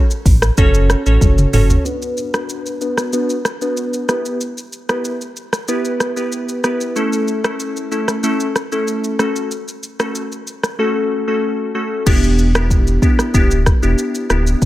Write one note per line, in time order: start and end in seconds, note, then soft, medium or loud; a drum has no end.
0.11 shaker soft
0.26 0.50 A1 loud
0.26 kick loud
0.26 open hi-hat medium
0.26 shaker medium
0.42 cross-stick loud
0.42 shaker medium
0.58 0.95 F#1 loud
0.58 1.02 C#4 loud
0.58 1.02 F#4 medium
0.58 1.02 A4 medium
0.58 1.02 C#5 loud
0.58 kick loud
0.58 shaker medium
0.74 shaker medium
0.90 cross-stick loud
0.90 shaker medium
1.06 1.18 A1 medium
1.06 1.50 C#4 medium
1.06 1.50 F#4 medium
1.06 1.50 A4 medium
1.06 1.50 C#5 medium
1.06 shaker soft
1.21 1.46 F#1 loud
1.21 kick medium
1.21 high tom medium
1.21 shaker medium
1.38 mid tom medium
1.38 shaker medium
1.53 1.78 F#1 medium
1.53 1.83 C#4 medium
1.53 1.83 F#4 medium
1.53 1.83 A4 medium
1.53 1.83 C#5 medium
1.53 mid tom loud
1.53 open hi-hat medium
1.53 shaker medium
1.70 floor tom loud
1.70 shaker medium
1.85 2.30 B3 medium
1.85 2.30 D4 medium
1.85 2.30 F#4 medium
1.85 2.30 B4 loud
1.85 shaker medium
2.02 shaker medium
2.17 shaker soft
2.34 2.77 B3 medium
2.34 2.77 D4 medium
2.34 2.77 F#4 medium
2.34 2.78 B4 medium
2.34 cross-stick loud
2.34 shaker soft
2.49 shaker medium
2.66 shaker soft
2.81 3.10 B3 medium
2.81 3.11 D4 medium
2.81 3.11 F#4 medium
2.81 3.11 B4 medium
2.81 shaker medium
2.98 cross-stick medium
2.98 shaker medium
3.13 3.36 B3 medium
3.13 3.36 D4 medium
3.13 3.36 F#4 medium
3.13 3.36 B4 loud
3.13 shaker medium
3.30 shaker medium
3.45 cross-stick medium
3.45 shaker medium
3.61 4.05 B3 medium
3.61 4.05 D4 medium
3.61 4.05 F#4 medium
3.61 4.05 B4 medium
3.61 shaker soft
3.77 shaker medium
3.93 shaker medium
4.08 4.38 B3 medium
4.08 4.38 E4 medium
4.08 4.38 G4 medium
4.08 4.38 B4 medium
4.08 cross-stick medium
4.08 shaker medium
4.25 shaker medium
4.41 shaker medium
4.58 shaker soft
4.73 shaker soft
4.89 5.12 B3 medium
4.89 5.12 E4 medium
4.89 5.12 G4 medium
4.89 5.12 B4 medium
4.89 cross-stick loud
4.89 shaker soft
5.05 shaker medium
5.21 shaker soft
5.36 shaker medium
5.53 cross-stick medium
5.53 shaker medium
5.68 6.13 B3 medium
5.68 6.13 E4 medium
5.68 6.13 G4 medium
5.68 6.13 B4 loud
5.68 shaker medium
5.85 shaker medium
6.00 cross-stick medium
6.00 shaker medium
6.16 6.60 B3 medium
6.16 6.60 E4 medium
6.16 6.60 G4 medium
6.16 6.61 B4 medium
6.16 shaker soft
6.32 shaker medium
6.49 shaker medium
6.64 6.93 B3 medium
6.64 6.93 E4 medium
6.64 6.94 G4 medium
6.64 6.94 B4 medium
6.64 cross-stick medium
6.64 shaker soft
6.81 shaker medium
6.96 7.40 A3 medium
6.96 7.40 C#4 medium
6.96 7.41 E4 medium
6.96 7.41 A4 loud
6.96 shaker medium
7.13 shaker soft
7.28 shaker soft
7.44 7.88 A3 medium
7.44 7.88 C#4 medium
7.44 7.88 E4 medium
7.44 7.88 A4 medium
7.44 cross-stick loud
7.44 shaker soft
7.60 shaker medium
7.76 shaker soft
7.91 8.21 A3 medium
7.91 8.21 C#4 medium
7.91 8.21 E4 medium
7.91 8.21 A4 medium
7.91 shaker medium
8.08 cross-stick medium
8.08 shaker medium
8.23 8.47 A3 medium
8.23 8.47 C#4 medium
8.23 8.47 E4 medium
8.23 8.47 A4 loud
8.23 shaker medium
8.40 shaker medium
8.56 cross-stick medium
8.56 shaker medium
8.72 9.16 A3 medium
8.72 9.16 C#4 medium
8.72 9.16 E4 medium
8.72 9.16 A4 medium
8.72 shaker soft
8.87 shaker medium
9.04 shaker medium
9.19 9.49 A3 medium
9.19 9.49 C#4 medium
9.19 9.49 F#4 medium
9.19 9.49 A4 medium
9.19 cross-stick medium
9.19 shaker soft
9.36 shaker medium
9.51 shaker medium
9.68 shaker soft
9.83 shaker soft
9.99 10.22 A3 medium
9.99 10.22 C#4 medium
9.99 10.22 F#4 medium
9.99 10.23 A4 medium
9.99 cross-stick loud
9.99 shaker soft
10.15 shaker medium
10.32 shaker soft
10.47 shaker medium
10.63 cross-stick medium
10.63 shaker medium
10.79 11.23 A3 medium
10.79 11.23 C#4 medium
10.79 11.24 F#4 medium
10.79 11.24 A4 loud
11.27 11.71 A3 medium
11.27 11.71 C#4 medium
11.27 11.71 F#4 medium
11.27 11.71 A4 medium
11.75 12.04 A3 medium
11.75 12.04 C#4 medium
11.75 12.04 F#4 medium
11.75 12.04 A4 medium
12.06 12.98 E1 loud
12.06 12.51 B3 medium
12.06 12.51 D4 medium
12.06 12.51 E4 medium
12.06 12.51 G4 loud
12.06 kick loud
12.06 crash loud
12.06 shaker medium
12.23 shaker medium
12.38 shaker medium
12.55 12.99 B3 medium
12.55 12.99 D4 medium
12.55 12.99 E4 medium
12.55 12.99 G4 medium
12.55 cross-stick loud
12.55 shaker soft
12.71 kick medium
12.71 shaker medium
12.87 shaker soft
13.02 13.32 B3 medium
13.02 13.32 D4 medium
13.02 13.32 E4 medium
13.02 13.32 G4 medium
13.02 kick loud
13.02 shaker medium
13.19 cross-stick medium
13.19 shaker medium
13.34 13.72 D1 loud
13.34 13.57 B3 loud
13.34 13.58 D4 medium
13.34 13.58 E4 medium
13.34 13.58 G4 loud
13.34 kick medium
13.34 shaker medium
13.51 shaker medium
13.66 kick loud
13.66 cross-stick medium
13.66 shaker medium
13.82 13.95 E1 loud
13.82 14.26 B3 medium
13.82 14.26 D4 medium
13.82 14.26 E4 medium
13.82 14.26 G4 medium
13.82 shaker medium
13.98 shaker medium
14.15 shaker medium
14.30 14.55 D1 medium
14.30 14.59 B3 medium
14.30 14.59 D4 medium
14.30 14.59 E4 medium
14.30 14.60 G4 medium
14.30 cross-stick medium
14.30 shaker medium
14.47 shaker medium
14.62 14.65 E1 loud
14.62 kick loud
14.62 shaker medium